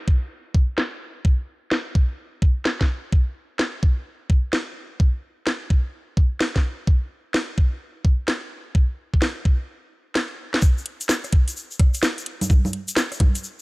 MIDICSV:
0, 0, Header, 1, 2, 480
1, 0, Start_track
1, 0, Tempo, 468750
1, 1279, Time_signature, 4, 2, 24, 8
1, 13943, End_track
2, 0, Start_track
2, 0, Title_t, "Drums"
2, 78, Note_on_c, 9, 36, 101
2, 181, Note_off_c, 9, 36, 0
2, 558, Note_on_c, 9, 36, 99
2, 661, Note_off_c, 9, 36, 0
2, 797, Note_on_c, 9, 38, 112
2, 899, Note_off_c, 9, 38, 0
2, 1278, Note_on_c, 9, 36, 111
2, 1380, Note_off_c, 9, 36, 0
2, 1756, Note_on_c, 9, 38, 109
2, 1859, Note_off_c, 9, 38, 0
2, 1999, Note_on_c, 9, 36, 97
2, 2101, Note_off_c, 9, 36, 0
2, 2479, Note_on_c, 9, 36, 102
2, 2581, Note_off_c, 9, 36, 0
2, 2718, Note_on_c, 9, 38, 108
2, 2820, Note_off_c, 9, 38, 0
2, 2874, Note_on_c, 9, 38, 57
2, 2875, Note_on_c, 9, 36, 58
2, 2977, Note_off_c, 9, 36, 0
2, 2977, Note_off_c, 9, 38, 0
2, 3199, Note_on_c, 9, 36, 107
2, 3301, Note_off_c, 9, 36, 0
2, 3678, Note_on_c, 9, 38, 106
2, 3781, Note_off_c, 9, 38, 0
2, 3919, Note_on_c, 9, 36, 96
2, 4022, Note_off_c, 9, 36, 0
2, 4399, Note_on_c, 9, 36, 101
2, 4502, Note_off_c, 9, 36, 0
2, 4638, Note_on_c, 9, 38, 108
2, 4740, Note_off_c, 9, 38, 0
2, 5119, Note_on_c, 9, 36, 104
2, 5221, Note_off_c, 9, 36, 0
2, 5598, Note_on_c, 9, 38, 102
2, 5701, Note_off_c, 9, 38, 0
2, 5839, Note_on_c, 9, 36, 93
2, 5942, Note_off_c, 9, 36, 0
2, 6319, Note_on_c, 9, 36, 96
2, 6422, Note_off_c, 9, 36, 0
2, 6559, Note_on_c, 9, 38, 106
2, 6662, Note_off_c, 9, 38, 0
2, 6715, Note_on_c, 9, 36, 56
2, 6715, Note_on_c, 9, 38, 56
2, 6817, Note_off_c, 9, 36, 0
2, 6817, Note_off_c, 9, 38, 0
2, 7039, Note_on_c, 9, 36, 103
2, 7141, Note_off_c, 9, 36, 0
2, 7520, Note_on_c, 9, 38, 105
2, 7622, Note_off_c, 9, 38, 0
2, 7759, Note_on_c, 9, 36, 88
2, 7862, Note_off_c, 9, 36, 0
2, 8239, Note_on_c, 9, 36, 92
2, 8341, Note_off_c, 9, 36, 0
2, 8478, Note_on_c, 9, 38, 106
2, 8581, Note_off_c, 9, 38, 0
2, 8959, Note_on_c, 9, 36, 103
2, 9061, Note_off_c, 9, 36, 0
2, 9354, Note_on_c, 9, 36, 57
2, 9439, Note_on_c, 9, 38, 104
2, 9457, Note_off_c, 9, 36, 0
2, 9541, Note_off_c, 9, 38, 0
2, 9679, Note_on_c, 9, 36, 91
2, 9781, Note_off_c, 9, 36, 0
2, 10397, Note_on_c, 9, 38, 104
2, 10500, Note_off_c, 9, 38, 0
2, 10794, Note_on_c, 9, 38, 74
2, 10874, Note_on_c, 9, 82, 72
2, 10879, Note_on_c, 9, 36, 119
2, 10896, Note_off_c, 9, 38, 0
2, 10977, Note_off_c, 9, 82, 0
2, 10981, Note_off_c, 9, 36, 0
2, 11038, Note_on_c, 9, 82, 40
2, 11118, Note_on_c, 9, 42, 110
2, 11140, Note_off_c, 9, 82, 0
2, 11220, Note_off_c, 9, 42, 0
2, 11271, Note_on_c, 9, 82, 81
2, 11274, Note_on_c, 9, 42, 65
2, 11358, Note_off_c, 9, 82, 0
2, 11358, Note_on_c, 9, 38, 116
2, 11358, Note_on_c, 9, 82, 73
2, 11376, Note_off_c, 9, 42, 0
2, 11461, Note_off_c, 9, 38, 0
2, 11461, Note_off_c, 9, 82, 0
2, 11511, Note_on_c, 9, 82, 38
2, 11514, Note_on_c, 9, 37, 32
2, 11514, Note_on_c, 9, 42, 37
2, 11597, Note_off_c, 9, 42, 0
2, 11597, Note_on_c, 9, 42, 108
2, 11599, Note_on_c, 9, 36, 102
2, 11613, Note_off_c, 9, 82, 0
2, 11616, Note_off_c, 9, 37, 0
2, 11700, Note_off_c, 9, 42, 0
2, 11701, Note_off_c, 9, 36, 0
2, 11752, Note_on_c, 9, 42, 70
2, 11760, Note_on_c, 9, 82, 77
2, 11842, Note_off_c, 9, 82, 0
2, 11842, Note_on_c, 9, 82, 64
2, 11855, Note_off_c, 9, 42, 0
2, 11944, Note_off_c, 9, 82, 0
2, 11992, Note_on_c, 9, 82, 40
2, 12079, Note_on_c, 9, 36, 108
2, 12079, Note_on_c, 9, 37, 56
2, 12079, Note_on_c, 9, 42, 110
2, 12094, Note_off_c, 9, 82, 0
2, 12181, Note_off_c, 9, 37, 0
2, 12181, Note_off_c, 9, 42, 0
2, 12182, Note_off_c, 9, 36, 0
2, 12227, Note_on_c, 9, 82, 75
2, 12234, Note_on_c, 9, 42, 66
2, 12317, Note_on_c, 9, 38, 123
2, 12318, Note_off_c, 9, 82, 0
2, 12318, Note_on_c, 9, 82, 60
2, 12336, Note_off_c, 9, 42, 0
2, 12419, Note_off_c, 9, 38, 0
2, 12420, Note_off_c, 9, 82, 0
2, 12473, Note_on_c, 9, 42, 55
2, 12480, Note_on_c, 9, 82, 43
2, 12557, Note_off_c, 9, 42, 0
2, 12557, Note_on_c, 9, 42, 111
2, 12582, Note_off_c, 9, 82, 0
2, 12660, Note_off_c, 9, 42, 0
2, 12712, Note_on_c, 9, 42, 65
2, 12712, Note_on_c, 9, 63, 61
2, 12720, Note_on_c, 9, 82, 85
2, 12797, Note_off_c, 9, 63, 0
2, 12797, Note_on_c, 9, 63, 60
2, 12799, Note_on_c, 9, 36, 122
2, 12815, Note_off_c, 9, 42, 0
2, 12822, Note_off_c, 9, 82, 0
2, 12900, Note_off_c, 9, 63, 0
2, 12902, Note_off_c, 9, 36, 0
2, 12954, Note_on_c, 9, 63, 60
2, 12960, Note_on_c, 9, 82, 44
2, 13038, Note_on_c, 9, 42, 106
2, 13056, Note_off_c, 9, 63, 0
2, 13062, Note_off_c, 9, 82, 0
2, 13140, Note_off_c, 9, 42, 0
2, 13189, Note_on_c, 9, 82, 86
2, 13193, Note_on_c, 9, 42, 67
2, 13277, Note_on_c, 9, 38, 123
2, 13285, Note_off_c, 9, 82, 0
2, 13285, Note_on_c, 9, 82, 71
2, 13295, Note_off_c, 9, 42, 0
2, 13380, Note_off_c, 9, 38, 0
2, 13387, Note_off_c, 9, 82, 0
2, 13433, Note_on_c, 9, 37, 33
2, 13433, Note_on_c, 9, 42, 35
2, 13438, Note_on_c, 9, 82, 42
2, 13518, Note_off_c, 9, 42, 0
2, 13518, Note_on_c, 9, 42, 108
2, 13518, Note_on_c, 9, 63, 76
2, 13519, Note_on_c, 9, 36, 108
2, 13536, Note_off_c, 9, 37, 0
2, 13540, Note_off_c, 9, 82, 0
2, 13620, Note_off_c, 9, 42, 0
2, 13620, Note_off_c, 9, 63, 0
2, 13622, Note_off_c, 9, 36, 0
2, 13673, Note_on_c, 9, 82, 84
2, 13674, Note_on_c, 9, 42, 66
2, 13760, Note_off_c, 9, 82, 0
2, 13760, Note_on_c, 9, 82, 60
2, 13776, Note_off_c, 9, 42, 0
2, 13862, Note_off_c, 9, 82, 0
2, 13943, End_track
0, 0, End_of_file